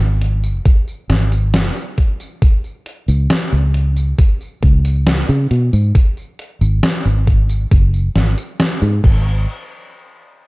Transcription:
0.00 G#1, tambourine
0.21 closed hi-hat
0.44 tambourine
0.65 kick, closed hi-hat, tambourine
0.88 tambourine
1.09 G#1, snare, closed hi-hat
1.32 closed hi-hat, tambourine
1.54 snare, closed hi-hat, tambourine
1.76 tambourine
1.98 kick, closed hi-hat
2.20 tambourine
2.42 kick, closed hi-hat, tambourine
2.64 tambourine
2.86 closed hi-hat
3.08 C#2, tambourine
3.30 snare, closed hi-hat, tambourine
3.52 C#2, tambourine
3.74 closed hi-hat
3.97 tambourine
4.19 kick, closed hi-hat, tambourine
4.41 tambourine
4.63 C#2, kick, closed hi-hat
4.85 closed hi-hat, tambourine
5.07 snare, closed hi-hat, tambourine
5.29 C#3, tambourine
5.51 B2, closed hi-hat
5.73 G#2, tambourine
5.95 kick, closed hi-hat, tambourine
6.17 tambourine
6.39 closed hi-hat
6.61 G#1, tambourine
6.83 snare, closed hi-hat, tambourine
7.05 G#1, tambourine
7.27 kick, closed hi-hat
7.49 tambourine
7.71 F#1, kick, closed hi-hat, tambourine
7.94 tambourine
8.15 G#1, snare, closed hi-hat
8.38 closed hi-hat, tambourine
8.60 snare, closed hi-hat, tambourine
8.82 G#2, tambourine
9.04 G#1, kick, crash

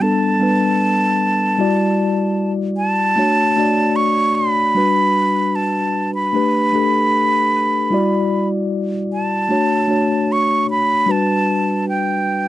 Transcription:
0.00 G3 B3 D4 A4 A5
0.39 G3 B3 D4 B4
1.58 G3 E4 F#4 D5
2.77 A5
3.16 A3 D4 F#4 C#5
3.56 A3 D4 F#4 D5
3.96 C#6
4.35 B5
4.75 G3 D4 F#4 B4
5.55 A5
6.15 B5
6.33 A3 D4 G4 B4
6.73 A3 D4 G4 A4
7.90 G3 E4 F#4 D5
9.13 A5
9.49 A3 D4 F#4 C#5
9.87 A3 D4 F#4 C#5
10.32 C#6
10.71 B5
11.06 G3 D4 F#4 B4
11.11 A5
11.89 G5

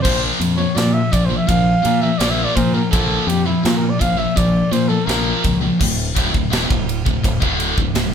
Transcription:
0.02 A#1 A#2 F3 A#3 C5, kick, crash
0.40 F2 A#2 F3, ride
0.57 A#2 F3 C#5
0.75 A#2 F3 D5, snare, ride
0.93 E5
1.12 A#1 A#2 F3 D5, kick, ride
1.25 F3 C5
1.30 A#2
1.37 E5
1.47 A#1 A#2 F3 F5, kick, ride
1.82 A#2 F3, ride
2.02 A#2 F3 E5
2.18 A#1 A#2 F3 A#3 D5, snare, ride
2.31 E5
2.44 D5
2.55 A#2 F3 C5, kick, ride
2.74 A#2 F3 A#4
2.91 A#1 A#2 F3 A#3 A4, kick, ride
3.27 F2 A#2 F3 G4, ride
3.45 A#2 F3 E4
3.63 A#2 F3 F4, snare, ride
3.77 A#4
3.90 D5
3.99 A#1 A#2 F3 F5, kick, ride
4.18 A#2 F3 E5
4.35 A#1 A#2 F3 D5, kick, ride
4.72 A#2 F3 C5, ride
4.88 A#2 F3 A4
5.05 A#1 A#2 F3 A#3 A#4
5.09 snare, ride
5.44 C#2 A#2 F3, kick, ride
5.61 A#2 F3
5.79 D1 D2 A2, kick, crash
6.15 D1 D2 A2, kick, ride
6.32 D1 D2 A2, kick
6.50 D#1 D#2 A#2, snare, ride
6.68 D1 D2 A2, kick
6.89 ride
7.05 D1 D2 A2, kick
7.23 D1 D2 A2, kick, ride
7.40 D1 D2 A2 D3, kick
7.60 ride
7.78 D1 D2 A2, kick
7.94 D1 D2 A2, snare, ride

